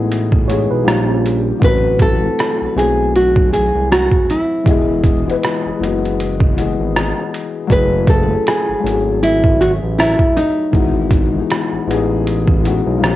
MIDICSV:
0, 0, Header, 1, 6, 480
1, 0, Start_track
1, 0, Key_signature, 4, "major"
1, 0, Tempo, 759494
1, 1024, Time_signature, 4, 2, 24, 8
1, 8316, End_track
2, 0, Start_track
2, 0, Title_t, "Tine electric piano"
2, 0, Program_c, 0, 4
2, 303, Note_on_c, 0, 73, 68
2, 442, Note_off_c, 0, 73, 0
2, 448, Note_on_c, 0, 71, 78
2, 452, Note_on_c, 0, 68, 70
2, 538, Note_off_c, 0, 71, 0
2, 539, Note_on_c, 0, 67, 81
2, 541, Note_off_c, 0, 68, 0
2, 544, Note_on_c, 0, 63, 67
2, 680, Note_off_c, 0, 67, 0
2, 682, Note_off_c, 0, 63, 0
2, 685, Note_on_c, 0, 65, 68
2, 689, Note_on_c, 0, 61, 63
2, 1005, Note_off_c, 0, 65, 0
2, 1007, Note_off_c, 0, 61, 0
2, 8316, End_track
3, 0, Start_track
3, 0, Title_t, "Nylon-string guitar"
3, 0, Program_c, 1, 24
3, 1038, Note_on_c, 1, 71, 101
3, 1255, Note_off_c, 1, 71, 0
3, 1276, Note_on_c, 1, 69, 100
3, 1753, Note_off_c, 1, 69, 0
3, 1756, Note_on_c, 1, 68, 85
3, 1996, Note_off_c, 1, 68, 0
3, 1999, Note_on_c, 1, 66, 88
3, 2229, Note_off_c, 1, 66, 0
3, 2232, Note_on_c, 1, 68, 92
3, 2474, Note_off_c, 1, 68, 0
3, 2476, Note_on_c, 1, 66, 93
3, 2717, Note_off_c, 1, 66, 0
3, 2721, Note_on_c, 1, 64, 72
3, 3751, Note_off_c, 1, 64, 0
3, 3751, Note_on_c, 1, 63, 72
3, 4367, Note_off_c, 1, 63, 0
3, 4878, Note_on_c, 1, 71, 101
3, 5113, Note_off_c, 1, 71, 0
3, 5116, Note_on_c, 1, 69, 90
3, 5355, Note_off_c, 1, 69, 0
3, 5358, Note_on_c, 1, 68, 88
3, 5830, Note_off_c, 1, 68, 0
3, 5833, Note_on_c, 1, 64, 87
3, 6072, Note_on_c, 1, 66, 89
3, 6076, Note_off_c, 1, 64, 0
3, 6136, Note_off_c, 1, 66, 0
3, 6310, Note_on_c, 1, 64, 87
3, 6552, Note_on_c, 1, 63, 72
3, 6554, Note_off_c, 1, 64, 0
3, 7483, Note_off_c, 1, 63, 0
3, 8316, End_track
4, 0, Start_track
4, 0, Title_t, "Felt piano"
4, 0, Program_c, 2, 0
4, 0, Control_c, 2, 64, 127
4, 0, Note_on_c, 2, 52, 83
4, 0, Note_on_c, 2, 56, 72
4, 0, Note_on_c, 2, 59, 73
4, 0, Note_on_c, 2, 63, 72
4, 0, Note_on_c, 2, 66, 99
4, 0, Note_on_c, 2, 68, 89
4, 0, Note_on_c, 2, 75, 58
4, 269, Note_off_c, 2, 52, 0
4, 275, Note_off_c, 2, 56, 0
4, 280, Note_off_c, 2, 59, 0
4, 284, Note_off_c, 2, 63, 0
4, 289, Note_off_c, 2, 68, 0
4, 289, Note_on_c, 2, 52, 78
4, 300, Note_on_c, 2, 56, 81
4, 309, Note_on_c, 2, 59, 74
4, 320, Note_on_c, 2, 63, 78
4, 330, Note_on_c, 2, 68, 91
4, 531, Note_on_c, 2, 53, 90
4, 537, Note_off_c, 2, 52, 0
4, 541, Note_on_c, 2, 55, 83
4, 542, Note_off_c, 2, 56, 0
4, 547, Note_off_c, 2, 59, 0
4, 552, Note_off_c, 2, 63, 0
4, 552, Note_on_c, 2, 58, 82
4, 554, Control_c, 2, 64, 0
4, 556, Note_off_c, 2, 66, 0
4, 556, Note_off_c, 2, 75, 0
4, 557, Note_off_c, 2, 68, 0
4, 560, Note_on_c, 2, 61, 73
4, 570, Note_on_c, 2, 65, 73
4, 607, Note_off_c, 2, 65, 0
4, 612, Note_on_c, 2, 67, 93
4, 672, Control_c, 2, 64, 127
4, 991, Note_off_c, 2, 53, 0
4, 995, Note_off_c, 2, 55, 0
4, 1000, Note_on_c, 2, 52, 84
4, 1001, Note_off_c, 2, 58, 0
4, 1005, Note_off_c, 2, 61, 0
4, 1009, Note_on_c, 2, 54, 85
4, 1020, Note_on_c, 2, 57, 87
4, 1030, Note_on_c, 2, 60, 76
4, 1031, Note_off_c, 2, 67, 0
4, 1032, Control_c, 2, 64, 0
4, 1040, Note_on_c, 2, 66, 104
4, 1157, Control_c, 2, 64, 127
4, 1366, Note_off_c, 2, 52, 0
4, 1371, Note_off_c, 2, 54, 0
4, 1376, Note_off_c, 2, 57, 0
4, 1381, Note_off_c, 2, 60, 0
4, 1386, Note_off_c, 2, 66, 0
4, 1394, Note_on_c, 2, 52, 61
4, 1404, Note_on_c, 2, 54, 57
4, 1414, Note_on_c, 2, 57, 59
4, 1424, Note_on_c, 2, 60, 60
4, 1434, Note_on_c, 2, 66, 78
4, 1716, Note_off_c, 2, 52, 0
4, 1721, Note_off_c, 2, 54, 0
4, 1726, Note_off_c, 2, 57, 0
4, 1731, Note_off_c, 2, 60, 0
4, 1735, Note_on_c, 2, 52, 65
4, 1736, Note_off_c, 2, 66, 0
4, 1744, Note_on_c, 2, 54, 69
4, 1753, Note_on_c, 2, 57, 62
4, 1765, Note_on_c, 2, 60, 70
4, 1774, Note_on_c, 2, 66, 76
4, 2645, Note_off_c, 2, 52, 0
4, 2650, Note_off_c, 2, 54, 0
4, 2654, Note_off_c, 2, 57, 0
4, 2660, Note_off_c, 2, 60, 0
4, 2665, Note_off_c, 2, 66, 0
4, 2931, Note_on_c, 2, 52, 86
4, 2941, Note_on_c, 2, 56, 87
4, 2951, Note_on_c, 2, 59, 84
4, 2953, Control_c, 2, 64, 0
4, 2962, Note_on_c, 2, 75, 82
4, 2972, Note_on_c, 2, 68, 96
4, 3049, Control_c, 2, 64, 127
4, 3292, Note_off_c, 2, 52, 0
4, 3296, Note_off_c, 2, 56, 0
4, 3302, Note_off_c, 2, 59, 0
4, 3307, Note_off_c, 2, 75, 0
4, 3312, Note_off_c, 2, 68, 0
4, 3312, Note_on_c, 2, 52, 78
4, 3323, Note_on_c, 2, 56, 75
4, 3332, Note_on_c, 2, 59, 67
4, 3344, Note_on_c, 2, 75, 75
4, 3353, Note_on_c, 2, 71, 90
4, 3635, Note_off_c, 2, 52, 0
4, 3641, Note_off_c, 2, 56, 0
4, 3645, Note_off_c, 2, 59, 0
4, 3651, Note_off_c, 2, 75, 0
4, 3654, Note_on_c, 2, 52, 85
4, 3656, Note_off_c, 2, 71, 0
4, 3665, Note_on_c, 2, 56, 77
4, 3675, Note_on_c, 2, 59, 74
4, 3685, Note_on_c, 2, 75, 71
4, 3695, Note_on_c, 2, 66, 91
4, 4112, Note_off_c, 2, 52, 0
4, 4117, Note_off_c, 2, 56, 0
4, 4122, Note_off_c, 2, 59, 0
4, 4127, Note_off_c, 2, 75, 0
4, 4132, Note_off_c, 2, 66, 0
4, 4134, Note_on_c, 2, 52, 83
4, 4142, Note_on_c, 2, 56, 76
4, 4154, Note_on_c, 2, 59, 75
4, 4164, Note_on_c, 2, 75, 76
4, 4174, Note_on_c, 2, 68, 85
4, 4818, Note_off_c, 2, 52, 0
4, 4822, Note_off_c, 2, 56, 0
4, 4828, Note_off_c, 2, 59, 0
4, 4833, Note_off_c, 2, 75, 0
4, 4838, Note_off_c, 2, 68, 0
4, 4847, Note_on_c, 2, 54, 104
4, 4858, Note_on_c, 2, 57, 87
4, 4868, Note_on_c, 2, 61, 80
4, 4871, Control_c, 2, 64, 0
4, 4878, Note_on_c, 2, 64, 80
4, 4888, Note_on_c, 2, 68, 90
4, 4966, Control_c, 2, 64, 127
4, 5210, Note_off_c, 2, 54, 0
4, 5215, Note_off_c, 2, 57, 0
4, 5220, Note_off_c, 2, 61, 0
4, 5225, Note_off_c, 2, 64, 0
4, 5230, Note_off_c, 2, 68, 0
4, 5232, Note_on_c, 2, 54, 63
4, 5241, Note_on_c, 2, 57, 60
4, 5252, Note_on_c, 2, 61, 62
4, 5262, Note_on_c, 2, 64, 62
4, 5273, Note_on_c, 2, 68, 71
4, 5550, Note_off_c, 2, 54, 0
4, 5560, Note_off_c, 2, 57, 0
4, 5560, Note_on_c, 2, 54, 71
4, 5565, Note_off_c, 2, 61, 0
4, 5570, Note_off_c, 2, 64, 0
4, 5570, Note_on_c, 2, 57, 68
4, 5575, Note_off_c, 2, 68, 0
4, 5580, Note_on_c, 2, 61, 67
4, 5590, Note_on_c, 2, 64, 60
4, 5600, Note_on_c, 2, 66, 65
4, 5641, Note_on_c, 2, 68, 76
4, 5642, Note_off_c, 2, 66, 0
4, 6477, Note_off_c, 2, 54, 0
4, 6483, Note_off_c, 2, 57, 0
4, 6487, Note_off_c, 2, 61, 0
4, 6492, Note_off_c, 2, 64, 0
4, 6518, Note_off_c, 2, 68, 0
4, 6771, Note_on_c, 2, 52, 92
4, 6780, Note_on_c, 2, 56, 82
4, 6791, Note_on_c, 2, 59, 79
4, 6792, Control_c, 2, 64, 0
4, 6800, Note_on_c, 2, 63, 83
4, 6810, Note_on_c, 2, 66, 97
4, 6902, Control_c, 2, 64, 127
4, 7131, Note_off_c, 2, 52, 0
4, 7136, Note_off_c, 2, 56, 0
4, 7141, Note_off_c, 2, 59, 0
4, 7146, Note_off_c, 2, 63, 0
4, 7151, Note_off_c, 2, 66, 0
4, 7163, Note_on_c, 2, 52, 72
4, 7174, Note_on_c, 2, 56, 60
4, 7183, Note_on_c, 2, 59, 58
4, 7195, Note_on_c, 2, 63, 58
4, 7204, Note_on_c, 2, 68, 70
4, 7481, Note_off_c, 2, 52, 0
4, 7486, Note_off_c, 2, 56, 0
4, 7491, Note_off_c, 2, 59, 0
4, 7497, Note_off_c, 2, 63, 0
4, 7498, Note_on_c, 2, 52, 84
4, 7501, Note_off_c, 2, 68, 0
4, 7508, Note_on_c, 2, 56, 78
4, 7519, Note_on_c, 2, 59, 78
4, 7528, Note_on_c, 2, 63, 80
4, 7539, Note_on_c, 2, 68, 103
4, 7954, Note_off_c, 2, 52, 0
4, 7959, Note_off_c, 2, 56, 0
4, 7964, Note_off_c, 2, 59, 0
4, 7968, Note_on_c, 2, 52, 86
4, 7969, Note_off_c, 2, 63, 0
4, 7974, Note_off_c, 2, 68, 0
4, 7977, Note_on_c, 2, 56, 77
4, 7989, Note_on_c, 2, 59, 74
4, 7998, Note_on_c, 2, 63, 81
4, 8009, Note_on_c, 2, 66, 97
4, 8202, Note_on_c, 2, 53, 93
4, 8212, Note_on_c, 2, 55, 80
4, 8216, Note_off_c, 2, 52, 0
4, 8221, Note_off_c, 2, 56, 0
4, 8223, Note_on_c, 2, 58, 75
4, 8226, Note_off_c, 2, 59, 0
4, 8231, Note_off_c, 2, 63, 0
4, 8231, Note_on_c, 2, 60, 62
4, 8233, Control_c, 2, 64, 0
4, 8237, Note_off_c, 2, 66, 0
4, 8242, Note_on_c, 2, 67, 91
4, 8272, Note_on_c, 2, 61, 76
4, 8278, Note_off_c, 2, 60, 0
4, 8316, Note_off_c, 2, 53, 0
4, 8316, Note_off_c, 2, 55, 0
4, 8316, Note_off_c, 2, 58, 0
4, 8316, Note_off_c, 2, 61, 0
4, 8316, Note_off_c, 2, 67, 0
4, 8316, End_track
5, 0, Start_track
5, 0, Title_t, "Analog synth bass"
5, 0, Program_c, 3, 38
5, 0, Note_on_c, 3, 33, 90
5, 424, Note_off_c, 3, 33, 0
5, 450, Note_on_c, 3, 35, 79
5, 532, Note_off_c, 3, 35, 0
5, 546, Note_on_c, 3, 34, 99
5, 963, Note_off_c, 3, 34, 0
5, 1025, Note_on_c, 3, 33, 107
5, 1442, Note_off_c, 3, 33, 0
5, 1653, Note_on_c, 3, 35, 48
5, 1690, Note_off_c, 3, 35, 0
5, 1745, Note_on_c, 3, 35, 96
5, 2345, Note_off_c, 3, 35, 0
5, 2372, Note_on_c, 3, 36, 87
5, 2580, Note_off_c, 3, 36, 0
5, 2946, Note_on_c, 3, 28, 100
5, 3363, Note_off_c, 3, 28, 0
5, 3574, Note_on_c, 3, 30, 45
5, 3611, Note_off_c, 3, 30, 0
5, 3665, Note_on_c, 3, 30, 89
5, 4265, Note_off_c, 3, 30, 0
5, 4292, Note_on_c, 3, 32, 88
5, 4500, Note_off_c, 3, 32, 0
5, 4866, Note_on_c, 3, 30, 116
5, 5283, Note_off_c, 3, 30, 0
5, 5492, Note_on_c, 3, 32, 45
5, 5529, Note_off_c, 3, 32, 0
5, 5587, Note_on_c, 3, 32, 92
5, 6186, Note_off_c, 3, 32, 0
5, 6210, Note_on_c, 3, 33, 83
5, 6419, Note_off_c, 3, 33, 0
5, 6785, Note_on_c, 3, 32, 98
5, 7202, Note_off_c, 3, 32, 0
5, 7409, Note_on_c, 3, 33, 45
5, 7447, Note_off_c, 3, 33, 0
5, 7503, Note_on_c, 3, 33, 95
5, 8104, Note_off_c, 3, 33, 0
5, 8129, Note_on_c, 3, 35, 85
5, 8212, Note_off_c, 3, 35, 0
5, 8222, Note_on_c, 3, 34, 94
5, 8316, Note_off_c, 3, 34, 0
5, 8316, End_track
6, 0, Start_track
6, 0, Title_t, "Drums"
6, 74, Note_on_c, 9, 42, 71
6, 137, Note_off_c, 9, 42, 0
6, 204, Note_on_c, 9, 36, 86
6, 267, Note_off_c, 9, 36, 0
6, 315, Note_on_c, 9, 42, 66
6, 378, Note_off_c, 9, 42, 0
6, 556, Note_on_c, 9, 37, 107
6, 557, Note_on_c, 9, 42, 71
6, 620, Note_off_c, 9, 37, 0
6, 621, Note_off_c, 9, 42, 0
6, 795, Note_on_c, 9, 42, 59
6, 858, Note_off_c, 9, 42, 0
6, 1023, Note_on_c, 9, 36, 97
6, 1032, Note_on_c, 9, 42, 67
6, 1087, Note_off_c, 9, 36, 0
6, 1095, Note_off_c, 9, 42, 0
6, 1261, Note_on_c, 9, 36, 92
6, 1262, Note_on_c, 9, 42, 68
6, 1324, Note_off_c, 9, 36, 0
6, 1325, Note_off_c, 9, 42, 0
6, 1511, Note_on_c, 9, 42, 85
6, 1519, Note_on_c, 9, 37, 107
6, 1575, Note_off_c, 9, 42, 0
6, 1582, Note_off_c, 9, 37, 0
6, 1765, Note_on_c, 9, 42, 57
6, 1828, Note_off_c, 9, 42, 0
6, 1995, Note_on_c, 9, 42, 70
6, 2059, Note_off_c, 9, 42, 0
6, 2125, Note_on_c, 9, 36, 89
6, 2188, Note_off_c, 9, 36, 0
6, 2236, Note_on_c, 9, 42, 67
6, 2299, Note_off_c, 9, 42, 0
6, 2480, Note_on_c, 9, 37, 108
6, 2481, Note_on_c, 9, 42, 71
6, 2543, Note_off_c, 9, 37, 0
6, 2544, Note_off_c, 9, 42, 0
6, 2602, Note_on_c, 9, 36, 80
6, 2665, Note_off_c, 9, 36, 0
6, 2717, Note_on_c, 9, 42, 63
6, 2781, Note_off_c, 9, 42, 0
6, 2945, Note_on_c, 9, 36, 95
6, 2954, Note_on_c, 9, 42, 68
6, 3008, Note_off_c, 9, 36, 0
6, 3017, Note_off_c, 9, 42, 0
6, 3182, Note_on_c, 9, 36, 94
6, 3184, Note_on_c, 9, 42, 70
6, 3245, Note_off_c, 9, 36, 0
6, 3247, Note_off_c, 9, 42, 0
6, 3346, Note_on_c, 9, 42, 33
6, 3409, Note_off_c, 9, 42, 0
6, 3433, Note_on_c, 9, 42, 84
6, 3440, Note_on_c, 9, 37, 101
6, 3496, Note_off_c, 9, 42, 0
6, 3503, Note_off_c, 9, 37, 0
6, 3686, Note_on_c, 9, 42, 60
6, 3749, Note_off_c, 9, 42, 0
6, 3825, Note_on_c, 9, 42, 31
6, 3888, Note_off_c, 9, 42, 0
6, 3918, Note_on_c, 9, 42, 68
6, 3981, Note_off_c, 9, 42, 0
6, 4046, Note_on_c, 9, 36, 88
6, 4109, Note_off_c, 9, 36, 0
6, 4158, Note_on_c, 9, 42, 64
6, 4221, Note_off_c, 9, 42, 0
6, 4400, Note_on_c, 9, 37, 108
6, 4401, Note_on_c, 9, 42, 74
6, 4463, Note_off_c, 9, 37, 0
6, 4464, Note_off_c, 9, 42, 0
6, 4638, Note_on_c, 9, 42, 62
6, 4701, Note_off_c, 9, 42, 0
6, 4865, Note_on_c, 9, 36, 97
6, 4873, Note_on_c, 9, 42, 70
6, 4928, Note_off_c, 9, 36, 0
6, 4936, Note_off_c, 9, 42, 0
6, 5102, Note_on_c, 9, 36, 95
6, 5102, Note_on_c, 9, 42, 72
6, 5165, Note_off_c, 9, 36, 0
6, 5165, Note_off_c, 9, 42, 0
6, 5352, Note_on_c, 9, 42, 83
6, 5360, Note_on_c, 9, 37, 105
6, 5415, Note_off_c, 9, 42, 0
6, 5423, Note_off_c, 9, 37, 0
6, 5604, Note_on_c, 9, 42, 61
6, 5667, Note_off_c, 9, 42, 0
6, 5836, Note_on_c, 9, 42, 67
6, 5900, Note_off_c, 9, 42, 0
6, 5965, Note_on_c, 9, 36, 88
6, 6028, Note_off_c, 9, 36, 0
6, 6078, Note_on_c, 9, 42, 65
6, 6141, Note_off_c, 9, 42, 0
6, 6319, Note_on_c, 9, 37, 106
6, 6320, Note_on_c, 9, 42, 76
6, 6383, Note_off_c, 9, 37, 0
6, 6384, Note_off_c, 9, 42, 0
6, 6441, Note_on_c, 9, 36, 78
6, 6504, Note_off_c, 9, 36, 0
6, 6557, Note_on_c, 9, 42, 62
6, 6620, Note_off_c, 9, 42, 0
6, 6783, Note_on_c, 9, 36, 98
6, 6793, Note_on_c, 9, 42, 66
6, 6847, Note_off_c, 9, 36, 0
6, 6856, Note_off_c, 9, 42, 0
6, 7020, Note_on_c, 9, 36, 88
6, 7021, Note_on_c, 9, 42, 74
6, 7084, Note_off_c, 9, 36, 0
6, 7084, Note_off_c, 9, 42, 0
6, 7271, Note_on_c, 9, 42, 84
6, 7278, Note_on_c, 9, 37, 102
6, 7334, Note_off_c, 9, 42, 0
6, 7341, Note_off_c, 9, 37, 0
6, 7525, Note_on_c, 9, 42, 59
6, 7588, Note_off_c, 9, 42, 0
6, 7755, Note_on_c, 9, 42, 71
6, 7819, Note_off_c, 9, 42, 0
6, 7885, Note_on_c, 9, 36, 92
6, 7948, Note_off_c, 9, 36, 0
6, 7998, Note_on_c, 9, 42, 67
6, 8061, Note_off_c, 9, 42, 0
6, 8240, Note_on_c, 9, 37, 106
6, 8241, Note_on_c, 9, 42, 74
6, 8303, Note_off_c, 9, 37, 0
6, 8304, Note_off_c, 9, 42, 0
6, 8316, End_track
0, 0, End_of_file